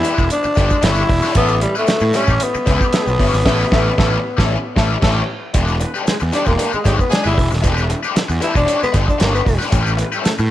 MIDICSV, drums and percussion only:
0, 0, Header, 1, 2, 480
1, 0, Start_track
1, 0, Tempo, 523104
1, 1251, Time_signature, 4, 2, 24, 8
1, 9640, End_track
2, 0, Start_track
2, 0, Title_t, "Drums"
2, 31, Note_on_c, 9, 82, 59
2, 42, Note_on_c, 9, 42, 69
2, 123, Note_off_c, 9, 82, 0
2, 134, Note_off_c, 9, 42, 0
2, 166, Note_on_c, 9, 82, 53
2, 169, Note_on_c, 9, 36, 78
2, 257, Note_off_c, 9, 82, 0
2, 261, Note_off_c, 9, 36, 0
2, 277, Note_on_c, 9, 42, 90
2, 277, Note_on_c, 9, 82, 72
2, 369, Note_off_c, 9, 42, 0
2, 369, Note_off_c, 9, 82, 0
2, 399, Note_on_c, 9, 82, 54
2, 490, Note_off_c, 9, 82, 0
2, 502, Note_on_c, 9, 82, 53
2, 525, Note_on_c, 9, 36, 94
2, 527, Note_on_c, 9, 42, 74
2, 532, Note_on_c, 9, 38, 36
2, 594, Note_off_c, 9, 82, 0
2, 617, Note_off_c, 9, 36, 0
2, 618, Note_off_c, 9, 42, 0
2, 624, Note_off_c, 9, 38, 0
2, 643, Note_on_c, 9, 82, 59
2, 651, Note_on_c, 9, 36, 85
2, 734, Note_off_c, 9, 82, 0
2, 743, Note_off_c, 9, 36, 0
2, 755, Note_on_c, 9, 82, 68
2, 758, Note_on_c, 9, 42, 94
2, 770, Note_on_c, 9, 38, 115
2, 847, Note_off_c, 9, 82, 0
2, 850, Note_off_c, 9, 42, 0
2, 862, Note_off_c, 9, 38, 0
2, 873, Note_on_c, 9, 82, 54
2, 964, Note_off_c, 9, 82, 0
2, 1004, Note_on_c, 9, 36, 91
2, 1005, Note_on_c, 9, 46, 70
2, 1096, Note_off_c, 9, 36, 0
2, 1097, Note_off_c, 9, 46, 0
2, 1118, Note_on_c, 9, 82, 61
2, 1139, Note_on_c, 9, 38, 36
2, 1210, Note_off_c, 9, 82, 0
2, 1231, Note_off_c, 9, 38, 0
2, 1235, Note_on_c, 9, 82, 83
2, 1238, Note_on_c, 9, 42, 91
2, 1243, Note_on_c, 9, 36, 113
2, 1327, Note_off_c, 9, 82, 0
2, 1330, Note_off_c, 9, 42, 0
2, 1335, Note_off_c, 9, 36, 0
2, 1359, Note_on_c, 9, 82, 60
2, 1451, Note_off_c, 9, 82, 0
2, 1481, Note_on_c, 9, 42, 65
2, 1573, Note_off_c, 9, 42, 0
2, 1607, Note_on_c, 9, 82, 51
2, 1699, Note_off_c, 9, 82, 0
2, 1715, Note_on_c, 9, 82, 81
2, 1726, Note_on_c, 9, 42, 83
2, 1729, Note_on_c, 9, 38, 118
2, 1807, Note_off_c, 9, 82, 0
2, 1817, Note_off_c, 9, 42, 0
2, 1821, Note_off_c, 9, 38, 0
2, 1833, Note_on_c, 9, 82, 65
2, 1925, Note_off_c, 9, 82, 0
2, 1952, Note_on_c, 9, 82, 62
2, 1963, Note_on_c, 9, 42, 75
2, 1971, Note_on_c, 9, 38, 34
2, 2044, Note_off_c, 9, 82, 0
2, 2055, Note_off_c, 9, 42, 0
2, 2063, Note_off_c, 9, 38, 0
2, 2083, Note_on_c, 9, 82, 56
2, 2093, Note_on_c, 9, 36, 83
2, 2175, Note_off_c, 9, 82, 0
2, 2185, Note_off_c, 9, 36, 0
2, 2202, Note_on_c, 9, 42, 94
2, 2208, Note_on_c, 9, 82, 72
2, 2293, Note_off_c, 9, 42, 0
2, 2300, Note_off_c, 9, 82, 0
2, 2335, Note_on_c, 9, 82, 53
2, 2426, Note_off_c, 9, 82, 0
2, 2439, Note_on_c, 9, 82, 47
2, 2451, Note_on_c, 9, 36, 87
2, 2451, Note_on_c, 9, 42, 80
2, 2457, Note_on_c, 9, 38, 40
2, 2531, Note_off_c, 9, 82, 0
2, 2543, Note_off_c, 9, 36, 0
2, 2543, Note_off_c, 9, 42, 0
2, 2548, Note_off_c, 9, 38, 0
2, 2576, Note_on_c, 9, 36, 94
2, 2582, Note_on_c, 9, 82, 53
2, 2668, Note_off_c, 9, 36, 0
2, 2674, Note_off_c, 9, 82, 0
2, 2684, Note_on_c, 9, 42, 92
2, 2692, Note_on_c, 9, 82, 69
2, 2696, Note_on_c, 9, 38, 127
2, 2776, Note_off_c, 9, 42, 0
2, 2783, Note_off_c, 9, 82, 0
2, 2788, Note_off_c, 9, 38, 0
2, 2819, Note_on_c, 9, 82, 55
2, 2910, Note_off_c, 9, 82, 0
2, 2931, Note_on_c, 9, 36, 94
2, 2932, Note_on_c, 9, 46, 77
2, 3023, Note_off_c, 9, 36, 0
2, 3024, Note_off_c, 9, 46, 0
2, 3062, Note_on_c, 9, 38, 33
2, 3062, Note_on_c, 9, 82, 60
2, 3153, Note_off_c, 9, 82, 0
2, 3154, Note_off_c, 9, 38, 0
2, 3171, Note_on_c, 9, 49, 96
2, 3172, Note_on_c, 9, 36, 115
2, 3177, Note_on_c, 9, 38, 121
2, 3263, Note_off_c, 9, 36, 0
2, 3263, Note_off_c, 9, 49, 0
2, 3269, Note_off_c, 9, 38, 0
2, 3413, Note_on_c, 9, 36, 117
2, 3417, Note_on_c, 9, 38, 117
2, 3504, Note_off_c, 9, 36, 0
2, 3509, Note_off_c, 9, 38, 0
2, 3654, Note_on_c, 9, 36, 117
2, 3662, Note_on_c, 9, 38, 116
2, 3746, Note_off_c, 9, 36, 0
2, 3753, Note_off_c, 9, 38, 0
2, 4021, Note_on_c, 9, 36, 101
2, 4028, Note_on_c, 9, 38, 99
2, 4113, Note_off_c, 9, 36, 0
2, 4120, Note_off_c, 9, 38, 0
2, 4372, Note_on_c, 9, 36, 102
2, 4378, Note_on_c, 9, 38, 115
2, 4464, Note_off_c, 9, 36, 0
2, 4469, Note_off_c, 9, 38, 0
2, 4607, Note_on_c, 9, 49, 81
2, 4611, Note_on_c, 9, 36, 118
2, 4614, Note_on_c, 9, 38, 120
2, 4699, Note_off_c, 9, 49, 0
2, 4703, Note_off_c, 9, 36, 0
2, 4705, Note_off_c, 9, 38, 0
2, 5083, Note_on_c, 9, 42, 94
2, 5088, Note_on_c, 9, 82, 81
2, 5089, Note_on_c, 9, 36, 100
2, 5175, Note_off_c, 9, 42, 0
2, 5180, Note_off_c, 9, 82, 0
2, 5181, Note_off_c, 9, 36, 0
2, 5210, Note_on_c, 9, 82, 53
2, 5302, Note_off_c, 9, 82, 0
2, 5321, Note_on_c, 9, 82, 58
2, 5328, Note_on_c, 9, 42, 65
2, 5412, Note_off_c, 9, 82, 0
2, 5420, Note_off_c, 9, 42, 0
2, 5460, Note_on_c, 9, 82, 50
2, 5552, Note_off_c, 9, 82, 0
2, 5566, Note_on_c, 9, 82, 76
2, 5576, Note_on_c, 9, 42, 93
2, 5579, Note_on_c, 9, 38, 95
2, 5658, Note_off_c, 9, 82, 0
2, 5667, Note_off_c, 9, 42, 0
2, 5671, Note_off_c, 9, 38, 0
2, 5685, Note_on_c, 9, 82, 69
2, 5776, Note_off_c, 9, 82, 0
2, 5799, Note_on_c, 9, 82, 60
2, 5811, Note_on_c, 9, 42, 72
2, 5819, Note_on_c, 9, 38, 32
2, 5890, Note_off_c, 9, 82, 0
2, 5903, Note_off_c, 9, 42, 0
2, 5910, Note_off_c, 9, 38, 0
2, 5924, Note_on_c, 9, 82, 57
2, 5934, Note_on_c, 9, 36, 77
2, 6016, Note_off_c, 9, 82, 0
2, 6026, Note_off_c, 9, 36, 0
2, 6046, Note_on_c, 9, 82, 75
2, 6049, Note_on_c, 9, 42, 93
2, 6138, Note_off_c, 9, 82, 0
2, 6140, Note_off_c, 9, 42, 0
2, 6172, Note_on_c, 9, 82, 50
2, 6264, Note_off_c, 9, 82, 0
2, 6283, Note_on_c, 9, 82, 54
2, 6290, Note_on_c, 9, 36, 84
2, 6295, Note_on_c, 9, 42, 82
2, 6300, Note_on_c, 9, 38, 38
2, 6374, Note_off_c, 9, 82, 0
2, 6382, Note_off_c, 9, 36, 0
2, 6386, Note_off_c, 9, 42, 0
2, 6392, Note_off_c, 9, 38, 0
2, 6417, Note_on_c, 9, 36, 87
2, 6424, Note_on_c, 9, 82, 52
2, 6508, Note_off_c, 9, 36, 0
2, 6516, Note_off_c, 9, 82, 0
2, 6531, Note_on_c, 9, 82, 70
2, 6533, Note_on_c, 9, 42, 85
2, 6545, Note_on_c, 9, 38, 108
2, 6622, Note_off_c, 9, 82, 0
2, 6625, Note_off_c, 9, 42, 0
2, 6637, Note_off_c, 9, 38, 0
2, 6651, Note_on_c, 9, 82, 50
2, 6742, Note_off_c, 9, 82, 0
2, 6770, Note_on_c, 9, 36, 98
2, 6775, Note_on_c, 9, 82, 46
2, 6779, Note_on_c, 9, 46, 69
2, 6862, Note_off_c, 9, 36, 0
2, 6867, Note_off_c, 9, 82, 0
2, 6871, Note_off_c, 9, 46, 0
2, 6897, Note_on_c, 9, 82, 58
2, 6910, Note_on_c, 9, 38, 35
2, 6988, Note_off_c, 9, 82, 0
2, 7002, Note_off_c, 9, 38, 0
2, 7008, Note_on_c, 9, 36, 110
2, 7010, Note_on_c, 9, 42, 95
2, 7010, Note_on_c, 9, 82, 80
2, 7099, Note_off_c, 9, 36, 0
2, 7101, Note_off_c, 9, 82, 0
2, 7102, Note_off_c, 9, 42, 0
2, 7132, Note_on_c, 9, 82, 57
2, 7224, Note_off_c, 9, 82, 0
2, 7247, Note_on_c, 9, 42, 73
2, 7248, Note_on_c, 9, 82, 63
2, 7339, Note_off_c, 9, 42, 0
2, 7340, Note_off_c, 9, 82, 0
2, 7375, Note_on_c, 9, 82, 55
2, 7467, Note_off_c, 9, 82, 0
2, 7487, Note_on_c, 9, 82, 79
2, 7491, Note_on_c, 9, 42, 91
2, 7494, Note_on_c, 9, 38, 112
2, 7579, Note_off_c, 9, 82, 0
2, 7583, Note_off_c, 9, 42, 0
2, 7586, Note_off_c, 9, 38, 0
2, 7609, Note_on_c, 9, 82, 66
2, 7701, Note_off_c, 9, 82, 0
2, 7716, Note_on_c, 9, 82, 64
2, 7727, Note_on_c, 9, 42, 73
2, 7808, Note_off_c, 9, 82, 0
2, 7818, Note_off_c, 9, 42, 0
2, 7850, Note_on_c, 9, 36, 85
2, 7852, Note_on_c, 9, 82, 56
2, 7941, Note_off_c, 9, 36, 0
2, 7944, Note_off_c, 9, 82, 0
2, 7964, Note_on_c, 9, 42, 94
2, 7977, Note_on_c, 9, 82, 73
2, 8056, Note_off_c, 9, 42, 0
2, 8069, Note_off_c, 9, 82, 0
2, 8101, Note_on_c, 9, 82, 49
2, 8193, Note_off_c, 9, 82, 0
2, 8202, Note_on_c, 9, 42, 75
2, 8206, Note_on_c, 9, 36, 81
2, 8207, Note_on_c, 9, 38, 38
2, 8207, Note_on_c, 9, 82, 57
2, 8293, Note_off_c, 9, 42, 0
2, 8297, Note_off_c, 9, 36, 0
2, 8298, Note_off_c, 9, 82, 0
2, 8299, Note_off_c, 9, 38, 0
2, 8332, Note_on_c, 9, 36, 100
2, 8343, Note_on_c, 9, 82, 55
2, 8424, Note_off_c, 9, 36, 0
2, 8435, Note_off_c, 9, 82, 0
2, 8441, Note_on_c, 9, 42, 90
2, 8453, Note_on_c, 9, 38, 112
2, 8455, Note_on_c, 9, 82, 75
2, 8533, Note_off_c, 9, 42, 0
2, 8545, Note_off_c, 9, 38, 0
2, 8547, Note_off_c, 9, 82, 0
2, 8582, Note_on_c, 9, 82, 53
2, 8674, Note_off_c, 9, 82, 0
2, 8685, Note_on_c, 9, 36, 92
2, 8687, Note_on_c, 9, 46, 73
2, 8700, Note_on_c, 9, 82, 46
2, 8776, Note_off_c, 9, 36, 0
2, 8779, Note_off_c, 9, 46, 0
2, 8791, Note_off_c, 9, 82, 0
2, 8816, Note_on_c, 9, 38, 32
2, 8826, Note_on_c, 9, 82, 62
2, 8907, Note_off_c, 9, 38, 0
2, 8918, Note_off_c, 9, 82, 0
2, 8922, Note_on_c, 9, 42, 94
2, 8924, Note_on_c, 9, 36, 107
2, 8935, Note_on_c, 9, 82, 85
2, 9013, Note_off_c, 9, 42, 0
2, 9016, Note_off_c, 9, 36, 0
2, 9027, Note_off_c, 9, 82, 0
2, 9052, Note_on_c, 9, 82, 62
2, 9144, Note_off_c, 9, 82, 0
2, 9163, Note_on_c, 9, 42, 74
2, 9165, Note_on_c, 9, 82, 58
2, 9254, Note_off_c, 9, 42, 0
2, 9256, Note_off_c, 9, 82, 0
2, 9290, Note_on_c, 9, 82, 52
2, 9381, Note_off_c, 9, 82, 0
2, 9406, Note_on_c, 9, 82, 78
2, 9409, Note_on_c, 9, 42, 86
2, 9412, Note_on_c, 9, 38, 96
2, 9498, Note_off_c, 9, 82, 0
2, 9501, Note_off_c, 9, 42, 0
2, 9504, Note_off_c, 9, 38, 0
2, 9526, Note_on_c, 9, 82, 61
2, 9618, Note_off_c, 9, 82, 0
2, 9640, End_track
0, 0, End_of_file